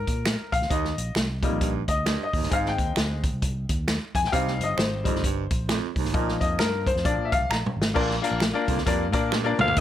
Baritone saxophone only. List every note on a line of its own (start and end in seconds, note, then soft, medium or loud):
0.70 0.92 D#2 medium
1.43 1.57 F2 medium
1.61 1.83 G2 medium
2.06 2.28 G2 medium
2.34 2.48 D#2 medium
2.52 2.74 G#2 medium
4.33 4.55 C3 medium
5.06 5.20 F2 medium
5.24 5.46 G2 medium
5.69 5.91 F2 medium
5.97 6.11 D#2 medium
6.15 6.36 A#2 medium
7.96 8.18 A#2 loud
8.68 8.83 F2 medium
8.86 9.08 G2 medium
9.31 9.53 G2 medium
9.59 9.73 D2 medium
9.77 9.80 D#2 loud